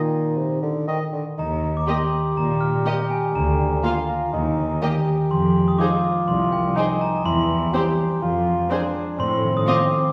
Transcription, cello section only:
1.38 D#2
2.36 A#2
3.34 D2
4.33 D#2
5.30 F2
6.28 C2
7.25 E2
8.22 F2
9.19 A2

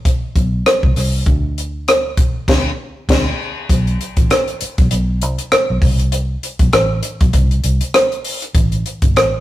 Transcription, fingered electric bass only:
0.36 B1
0.84 C2
0.97 C2
1.27 D2
2.49 D2
3.09 D2
3.70 B1
4.17 A1
4.62 muted fingered electric bass stroke
4.79 B1
4.92 B1
5.22 C2
5.53 muted fingered electric bass stroke
5.70 B1
5.82 C2
6.60 B1
6.74 A1
7.21 B1
7.34 C2
7.64 C2
8.55 A1
9.03 G1
9.17 A1

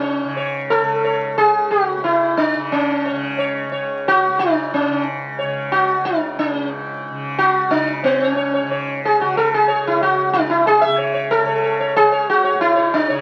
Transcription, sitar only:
Already playing: C#4
0.03 C#5
0.37 C#5
0.70 A4
1.04 C#5
1.38 G#4
1.71 F#4
2.04 E4
2.37 D4
2.72 C#4
3.06 C#5
3.39 C#5
3.72 C#5
4.08 F#4
4.39 D4
4.74 C#4
5.39 C#5
5.72 F#4
6.05 D4
6.39 C#4
7.38 F#4
7.71 D4
8.03 B3 C#5
8.20 C4 C#5
8.32 C#4
8.36 C#5
8.54 C#5
8.71 C#5
9.05 G#4
9.21 F#4
9.37 A4
9.54 G#4
9.68 C#5
9.87 E4
10.03 F#4
10.33 D4
10.50 E4
10.67 G#4
10.81 E5
10.98 C#5
11.14 C#5
11.31 A4
11.46 C#5
11.63 C#5
11.80 C#5
11.96 G#4
12.12 C#5
12.30 F#4
12.44 C#5
12.61 E4
12.76 C#5
12.94 D4
13.09 C#5

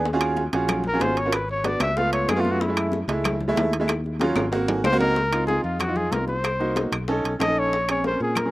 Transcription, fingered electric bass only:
Already playing: D#2
0.53 A#1
1.00 G#1
1.80 C#2
2.28 F#2
3.08 C#2
3.56 D#2
4.36 G#1
4.84 C#2
5.64 F2
6.11 C2
6.92 B1
7.24 B1
7.40 A#1
8.20 A#2

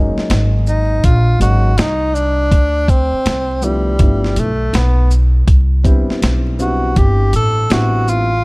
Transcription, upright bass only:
Already playing: F#1
0.16 muted upright bass stroke
0.30 G#1
1.04 A#1
1.40 G#1
1.77 C2
2.52 D2
3.12 muted upright bass stroke
3.26 C2
4.00 G1
4.36 B1
4.73 B1
5.48 C2
6.09 muted upright bass stroke
6.22 B1
6.97 G1
7.33 A1
7.70 A1

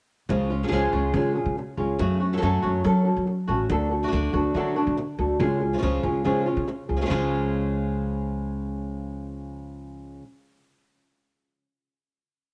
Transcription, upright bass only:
0.29 C#2
0.71 C#2
0.93 C#2
1.13 C#3
1.45 C#3
1.77 C#2
1.99 F#2
2.42 F#2
2.63 F#2
2.84 F#3
3.16 F#3
3.48 A1
3.69 D2
4.13 D2
4.34 D2
4.54 D3
4.87 D3
5.19 D2
5.40 C#2
5.82 C#2
6.03 C#2
6.25 C#3
6.57 C#3
6.89 C#2
7.10 C#2

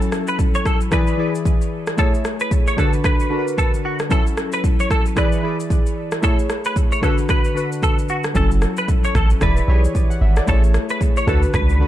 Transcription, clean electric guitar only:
0.28 B4
0.55 C#5
0.66 A4
0.93 B4
1.99 A4
2.41 B4
2.68 C#5
2.79 A4
3.05 B4
3.58 A4
3.85 F#4
4.11 A4
4.54 B4
4.80 C#5
4.91 A4
5.18 B4
6.24 A4
6.66 B4
6.92 C#5
7.03 A4
7.30 B4
7.83 A4
8.10 F#4
8.36 A4
8.78 B4
9.05 C#5
9.16 A4
9.42 B4
10.49 A4
10.90 B4
11.17 C#5
11.28 A4
11.55 B4

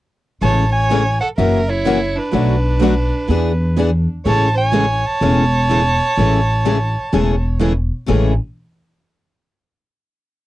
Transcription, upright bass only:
0.42 A1
1.38 F#1
2.33 B1
3.29 E2
4.25 A1
5.21 E1
6.18 A1
7.13 E1
8.09 A1

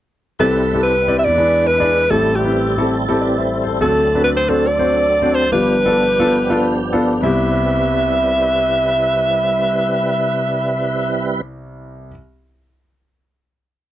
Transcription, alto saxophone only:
0.40 A4
0.83 B4
1.19 E5
1.25 D5
1.67 B4
2.10 A4
2.36 G4
3.82 A4
4.24 B4
4.37 C5
4.49 A4
4.67 D5
5.35 C5
5.52 B4
7.23 E5

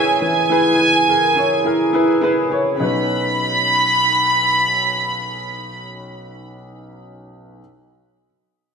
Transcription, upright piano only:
Already playing: E4 G#4 A#4 B4 C#5
0.21 E3 E4 G#4 B4
0.50 E4 G#4 B4
0.78 E4 B4
1.08 E4 G#4 A#4
1.36 E4 G#4 C#5
1.64 E4 G#4 A#4
1.93 E4 G#4 B4
2.21 E4 G#4 B4
2.50 E4 G#4 C#5
2.76 C#4
2.80 B1 D#4 B4

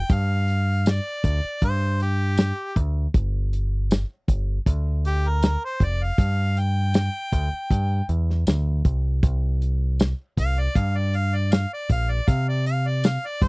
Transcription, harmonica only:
Already playing: G5
0.13 F5
0.89 D5
1.65 C5
2.02 G4
5.07 G4
5.28 A#4
5.65 C5
5.84 D5
6.03 F5
6.59 G5
10.40 F5
10.59 D5
10.77 F5
10.97 D5
11.16 F5
11.36 D5
11.53 F5
11.73 D5
11.92 F5
12.11 D5
12.29 F5
12.49 D5
12.67 F5
12.87 D5
13.06 F5
13.26 D5
13.43 C5

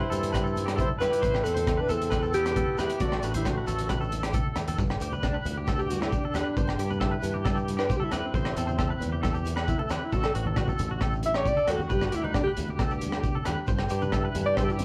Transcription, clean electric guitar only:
0.10 A4
0.33 B4
0.44 A4
0.66 G4
0.76 A4
0.99 B4
1.11 G4
1.22 C5
1.44 B4
1.54 C5
1.77 B4
1.89 A4
2.10 B4
2.23 A4
2.45 G4
2.57 A4
2.78 B4
2.90 G4
3.01 D5
3.24 B4
3.34 C5
3.58 B4
3.67 A4
3.90 B4
4.01 A4
4.23 G4
4.34 A4
4.68 A4
4.79 muted clean electric guitar stroke
5.02 G4
5.13 B4
5.23 D4
5.34 B4
5.57 G4
5.68 A4
5.79 G4
6.02 G4
6.25 A4
6.36 B4
6.58 C5
6.80 G4
6.90 B4
7.00 A4
7.11 B4
7.34 G4
7.45 A4
7.55 G4
7.77 G4
8.00 A4
8.12 B4
8.35 C5
8.57 A4
8.67 C5
8.79 A4
8.90 B4
9.12 G4
9.23 A4
9.34 G4
9.56 B4
9.79 A4
9.91 B4
10.13 A4
10.35 F#4
10.47 A4
10.57 F#4
10.69 A4
10.91 F#4
11.01 A4
11.35 G4
11.57 A4
11.68 F#4
11.89 B4
12.12 G4
12.24 B4
12.36 G4
12.47 B4
12.70 G4
12.82 A4
12.91 G4
13.13 G4
13.35 A4
13.46 B4
13.68 C5
13.91 G4
14.02 B4
14.13 A4
14.25 B4
14.46 G4
14.58 A4
14.69 G4

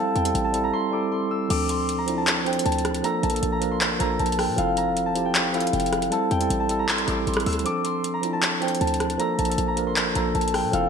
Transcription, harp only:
Already playing: F5 G5 A5
0.16 G5
0.44 A5
0.64 A#5
0.73 C6
0.92 D6
1.12 C6
1.31 E6
1.50 D6
1.69 C6
1.98 A#5
2.18 A5
2.46 G5
2.66 A5
3.04 A#5
3.23 A5
3.52 A#5
3.71 C6
4.00 A#5
4.19 A5
4.39 G5
4.58 F5
4.77 A#5
5.06 A5
5.25 G5
5.54 F5
5.73 G5
6.12 A5
6.31 G5
6.60 A5
6.79 A#5
6.89 C6
7.08 D6
7.27 C6
7.46 E6
7.66 D6
7.85 C6
8.14 A#5
8.33 A5
8.62 G5
8.81 A5
9.19 A#5
9.39 A5
9.68 A#5
9.87 C6
10.16 A#5
10.35 A5
10.54 G5
10.73 F5

